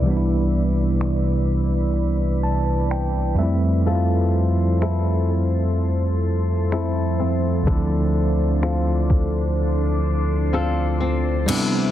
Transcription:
Already playing: ambient pad C3 E4 B4 D5
0.02 tine electric piano C2 E3
0.06 tine electric piano G3 B3
0.10 tine electric piano D4
0.17 tine electric piano E4
1.01 finger snap
2.43 tine electric piano A5
2.91 tine electric piano G5, finger snap
3.35 tine electric piano F2 G3 E5
3.39 ambient pad F3 A4 C5, tine electric piano A3 C4
3.43 tine electric piano E4
3.86 nylon-string guitar F3 A4
4.81 nylon-string guitar C4 E4 A4, finger snap
6.72 nylon-string guitar C4 E4 A4, finger snap
7.20 nylon-string guitar C4
7.63 tine electric piano D2 E3, nylon-string guitar D3, ambient pad D4, kick
7.67 tine electric piano A3 C4, nylon-string guitar A4
7.72 tine electric piano F3 E4
8.62 nylon-string guitar C4 F4 A4, finger snap
9.10 kick
10.53 nylon-string guitar C4 F4 A4
11.01 nylon-string guitar C4
11.46 nylon-string guitar C3, tine electric piano G3 B3 D4, ambient pad D4 G4 B4 E5, closed hi-hat, crash
11.51 tine electric piano E4

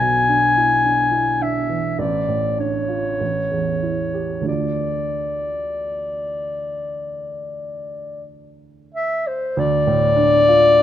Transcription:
Already playing: grand piano B1, clarinet G#5
0.00 grand piano B2
0.28 grand piano D4
0.57 grand piano E4
0.84 grand piano D4
1.12 grand piano E4
1.41 grand piano D4, clarinet E5
1.69 grand piano E3
1.99 grand piano A1, clarinet D5
2.28 grand piano A2
2.58 grand piano D4, clarinet C#5
2.88 grand piano F4
3.21 grand piano A1
3.51 grand piano E2
3.83 grand piano E4
4.14 grand piano G4
4.41 grand piano D2 A3 D4
4.45 grand piano F4, clarinet D5
8.94 clarinet E5
9.27 clarinet C5
9.57 grand piano D2, clarinet D5
9.87 grand piano A2
10.16 grand piano D4
10.48 grand piano F4

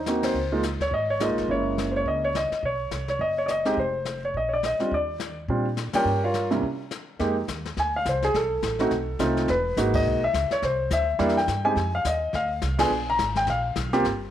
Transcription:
Already playing: upright bass D#2
0.06 grand piano A#3 C4 D#4 F#4, snare, hi-hat pedal
0.23 grand piano C5, snare, ride
0.34 upright bass C#2, brush sweep
0.52 grand piano G#3 A#3 D#4 F4
0.63 snare, hi-hat pedal
0.79 upright bass D2, grand piano C#5, snare
0.91 upright bass G#1, grand piano D#5, brush sweep, kick
1.10 grand piano C#5
1.20 grand piano G#3 A#3 D#4 F4 D#5, snare, hi-hat pedal
1.29 upright bass A#1
1.38 upright bass G1, snare
1.48 upright bass F#1, grand piano G#3 A#3 C#4 E4 C#5, brush sweep, kick
1.78 snare, hi-hat pedal
1.91 grand piano C5
1.96 grand piano C#5
2.06 upright bass C#2, grand piano D#5, brush sweep, kick
2.25 grand piano C#5
2.35 grand piano D#5, snare, hi-hat pedal
2.51 muted upright bass stroke, snare
2.63 upright bass B1, grand piano C#5, brush sweep, kick
2.91 upright bass C2, snare, hi-hat pedal
3.08 grand piano C#5, snare
3.19 upright bass F#1, grand piano D#5, brush sweep, kick
3.38 grand piano C#5
3.46 grand piano D5, snare, hi-hat pedal
3.51 grand piano D#5
3.65 grand piano G#3 C4 D#4 G4, snare
3.77 upright bass F1, grand piano C5, brush sweep, kick
4.05 snare, hi-hat pedal
4.25 grand piano C#5
4.34 upright bass A#1, grand piano D#5, brush sweep, kick
4.49 grand piano C#5
4.53 grand piano D5
4.63 grand piano D#5, snare, hi-hat pedal
4.79 grand piano G3 C4 D4 F4, muted upright bass stroke, snare
4.91 upright bass D#2, grand piano D5, brush sweep, kick
5.20 snare, hi-hat pedal
5.48 upright bass A#2, grand piano G3 C4 D4 F4, brush sweep, kick
5.77 snare, hi-hat pedal
5.93 grand piano G3 A#3 C#4 F4 G4 A#4 C#5 G5, muted upright bass stroke, snare, ride
6.05 upright bass G2, brush sweep
6.24 grand piano F4 A#4 C#5 F5
6.34 snare, hi-hat pedal
6.51 grand piano C3 G3 A#3 C#4 E4, snare
6.62 brush sweep, kick
6.91 snare, hi-hat pedal
7.19 upright bass F2, grand piano G#3 A#3 D#4 G4, brush sweep, kick, snare
7.48 upright bass D#2, kick, snare, hi-hat pedal
7.65 snare
7.77 upright bass D2, grand piano G#5, brush sweep, kick, snare
7.96 grand piano F5
8.05 upright bass C2, grand piano C5, kick, snare, hi-hat pedal
8.22 grand piano G#4, snare
8.34 upright bass B1, grand piano A4, brush sweep, kick, snare
8.63 upright bass A1, kick, snare, hi-hat pedal
8.79 grand piano A3 C4 D#4 F#4, snare
8.91 upright bass B1, brush sweep, kick, snare
9.19 upright bass C2, grand piano A3 C4 D#4 F4, kick, snare, hi-hat pedal
9.37 snare
9.48 upright bass E1, grand piano B4, brush sweep, kick, snare
9.77 upright bass G#1, grand piano G#3 A#3 D#4 F#4, kick, snare, hi-hat pedal
9.94 grand piano D#5, kick, crash
10.04 upright bass B1, brush sweep
10.24 grand piano E5
10.33 upright bass C#2, kick, snare, hi-hat pedal
10.51 grand piano C#5, muted upright bass stroke, snare
10.62 upright bass C2, grand piano C5, brush sweep, kick, snare
10.90 upright bass D2, grand piano E5, kick, snare, hi-hat pedal
11.19 upright bass E2, grand piano G3 A#3 D4 E4, brush sweep, kick, snare
11.29 snare
11.37 grand piano G5, snare
11.48 upright bass G2, kick, snare, hi-hat pedal
11.64 grand piano G#3 C4 D#4 G4 G#5
11.76 upright bass F2, brush sweep, kick, snare
11.95 grand piano F5
12.05 upright bass D#2, grand piano D#5, kick, snare, hi-hat pedal
12.33 upright bass D2, grand piano F5, brush sweep, kick, snare
12.62 upright bass C2, kick, snare, hi-hat pedal
12.78 grand piano B3 D4 F4 G#4 G#5, snare, ride
12.90 upright bass A#1, brush sweep
13.10 grand piano A#5
13.19 upright bass G#1, kick, snare, hi-hat pedal
13.35 grand piano G5, snare
13.47 upright bass A#1, grand piano F5, brush sweep, kick, snare
13.76 upright bass B1, kick, snare, hi-hat pedal
13.93 grand piano A#3 C4 F4 G4, snare
14.04 upright bass G1, brush sweep, kick, snare

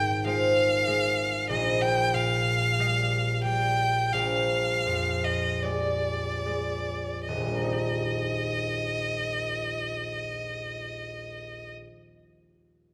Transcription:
Already playing: harp G#1 G#2, violin G5
0.25 harp G#3 F4 C5, violin F5
0.87 harp G#3
1.49 harp A#1, violin D#5
1.81 violin G5
2.14 harp A#2, violin F5
2.79 harp G3 G4 D#5
3.44 harp G3, violin G5
4.12 harp A#1, violin F5
4.86 harp F2
5.24 violin D#5
5.63 harp G#3 G4 D5, violin D5
6.46 harp G#3
7.26 harp D#1, violin D#5
7.37 harp A#1
7.46 harp G3
7.54 harp A#3
7.63 harp D#4
7.72 harp G4

